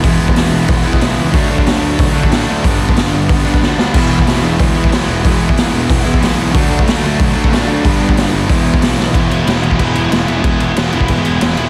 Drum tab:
CC |----------------|----------------|----------------|x---------------|
HH |o---o---o---o---|o---o---o---o---|o---o---o-------|o---o---o---o---|
SD |----o-------o---|----o-------o---|----o-------o-o-|----o-------o---|
BD |o--o----o--o----|o--o----o--o----|o--o----o--o----|o--o----o--o----|

CC |----------------|----------------|----------------|x-x-x-x-x-x-x-x-|
HH |o---o---o---o---|o---o---o---o---|o---o---o---o---|----------------|
SD |----o-------o---|----o-------o---|----o-------o-o-|----o-------o---|
BD |o--o----o--o----|o--o----o--o----|o--o----o--o----|o------oo-------|

CC |x-x-x-x-x-x-x-x-|
HH |----------------|
SD |----o-------o---|
BD |o------oo-------|